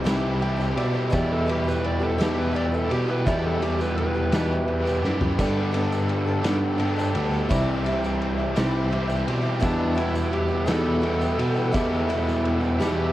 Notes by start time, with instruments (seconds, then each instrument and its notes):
Already playing: upright piano E4 G4 C5 D5, tonewheel organ C5 E5 D6
0.04 tine electric piano C2, twelve-string acoustic guitar C3 E3 G3 D4 G4, overdriven electric guitar E4, snare, ride, tambourine
0.08 overdriven electric guitar C3
0.39 twelve-string acoustic guitar E3 G3 D4 G4, overdriven electric guitar E4, upright piano G5, ride
0.57 twelve-string acoustic guitar G3 D4 G4
0.61 tambourine
0.76 tine electric piano B2, overdriven electric guitar G3 E4 G4, upright piano D5, ride
0.93 twelve-string acoustic guitar G3 D4 G4, tambourine
1.10 twelve-string acoustic guitar E2 B2 E3 G3 B3 G4, tine electric piano E2, upright piano E4 G4 B4, overdriven electric guitar E4, tonewheel organ G4 B5, kick, ride, tambourine
1.14 electric slide guitar D5, upright piano E5
1.33 electric slide guitar A4
1.46 twelve-string acoustic guitar E3 G3 B3 G4, ride, tambourine
1.51 electric slide guitar G4
1.64 twelve-string acoustic guitar E3 G3 B3 G4
1.68 electric slide guitar B4, tambourine
1.84 electric slide guitar D5, ride
2.00 twelve-string acoustic guitar E3 G3 B3 G4, electric slide guitar A4
2.18 twelve-string acoustic guitar E2 B2 E3 G3 B3 G4, tine electric piano E2, overdriven electric guitar E4, electric slide guitar G4, snare, ride, tambourine
2.38 electric slide guitar B4
2.53 twelve-string acoustic guitar E3 G3 B3 G4, overdriven electric guitar E4, electric slide guitar D5, ride
2.71 twelve-string acoustic guitar E3 G3 B3 G4, tambourine
2.75 electric slide guitar A4
2.89 tine electric piano B2, overdriven electric guitar E3 G3 E4 G4, electric slide guitar G4, ride
3.07 twelve-string acoustic guitar E3 G3 B3 G4, electric slide guitar B4
3.26 twelve-string acoustic guitar E2 B2 E3 G3 B3 G4, tine electric piano E2, upright piano E4 G4 B4 E5, overdriven electric guitar E4, tonewheel organ D5, electric slide guitar D5, kick, ride, tambourine
3.45 electric slide guitar A4
3.62 twelve-string acoustic guitar E3 G3 B3 G4, electric slide guitar G4, ride, tambourine
3.79 twelve-string acoustic guitar E3 G3 B3 G4, electric slide guitar B4, tambourine
3.98 electric slide guitar B4, ride
4.14 twelve-string acoustic guitar E3 G3 B3 G4
4.32 twelve-string acoustic guitar E2 B2 E3 G3 B3 G4, tine electric piano E2, overdriven electric guitar E4, snare, ride, tambourine
4.51 tambourine
4.67 twelve-string acoustic guitar E3 G3 B3 G4, overdriven electric guitar E4, ride
4.85 twelve-string acoustic guitar E3 G3 B3 G4, tambourine
5.02 tine electric piano F#2, overdriven electric guitar E3 G3 E4 G4, snare, tambourine
5.21 twelve-string acoustic guitar E3 G3 B3 G4, floor tom
5.38 overdriven electric guitar G2 D3 G4, tine electric piano G2, twelve-string acoustic guitar G3 B3 D4 A4, upright piano G4 A4 B4 D5, tonewheel organ A4 G5, kick, ride, tambourine, crash
5.72 twelve-string acoustic guitar G3 B3 D4 A4, ride, tambourine
5.91 twelve-string acoustic guitar B3 D4 A4, tambourine
6.09 ride
6.26 twelve-string acoustic guitar B3 D4 A4
6.42 tine electric piano G2, overdriven electric guitar G2 D3 G4, twelve-string acoustic guitar G3 B3 D4 A4, snare, ride, tambourine
6.78 twelve-string acoustic guitar G3 B3 D4 A4, ride
6.82 overdriven electric guitar G4
6.96 twelve-string acoustic guitar B3 D4 A4, tambourine
7.14 tine electric piano D2, overdriven electric guitar G3 B3 D4 G4, ride
7.31 twelve-string acoustic guitar B3 D4 A4, tambourine
7.49 tine electric piano C2, twelve-string acoustic guitar C3 E3 G3 D4 E4, overdriven electric guitar C4 G4, upright piano E4 G4 C5 D5, tonewheel organ C5 E5 D6, kick, ride, tambourine
7.84 twelve-string acoustic guitar E3 G3 D4 E4, ride, tambourine
8.02 twelve-string acoustic guitar G3 D4 E4, tambourine
8.21 ride
8.38 twelve-string acoustic guitar G3 D4 E4
8.55 tine electric piano C2, twelve-string acoustic guitar C3 E3 G3 D4 E4, overdriven electric guitar C4 G4, snare, ride, tambourine
8.90 twelve-string acoustic guitar E3 G3 D4 E4, overdriven electric guitar C4 G4, ride
9.08 twelve-string acoustic guitar G3 D4 E4, tambourine
9.27 tine electric piano B2, overdriven electric guitar G3 C4 G4, ride
9.42 twelve-string acoustic guitar G3 D4 E4, tambourine
9.60 twelve-string acoustic guitar E2 B2 E3 G3 B3 E4, tine electric piano E2, electric slide guitar D4, upright piano E4 G4 B4, tonewheel organ B4 G5 E6, kick, ride, tambourine
9.64 overdriven electric guitar G4, upright piano E5
9.95 twelve-string acoustic guitar E3 G3 B3 E4, electric slide guitar E4, ride
10.14 twelve-string acoustic guitar E3 G3 B3 E4, tambourine
10.33 electric slide guitar G4, ride
10.48 twelve-string acoustic guitar E3 G3 B3 E4
10.66 twelve-string acoustic guitar E2 B2 E3 G3 B3 E4, tine electric piano E2, overdriven electric guitar G4, electric slide guitar A4, snare, ride, tambourine
10.71 overdriven electric guitar E2
11.01 twelve-string acoustic guitar E3 G3 B3 E4, ride
11.07 overdriven electric guitar G4
11.19 twelve-string acoustic guitar E3 G3 B3 E4, tambourine
11.39 tine electric piano B2, overdriven electric guitar E3 G3 B3 G4, ride
11.54 twelve-string acoustic guitar E3 G3 B3 E4, tambourine
11.72 twelve-string acoustic guitar E2 B2 E3 G3 B3 E4, tine electric piano E2, upright piano E4 G4 B4 E5, kick, ride, tambourine
11.76 overdriven electric guitar G4
11.94 tambourine
12.09 twelve-string acoustic guitar E3 G3 B3 E4, ride, tambourine
12.26 twelve-string acoustic guitar E3 G3 B3 E4, tambourine
12.45 ride
12.61 twelve-string acoustic guitar E3 G3 B3 E4, tambourine
12.79 tine electric piano E2, twelve-string acoustic guitar E2 B2 E3 G3 B3 E4, overdriven electric guitar G4, electric slide guitar G4, snare, tambourine
12.99 tambourine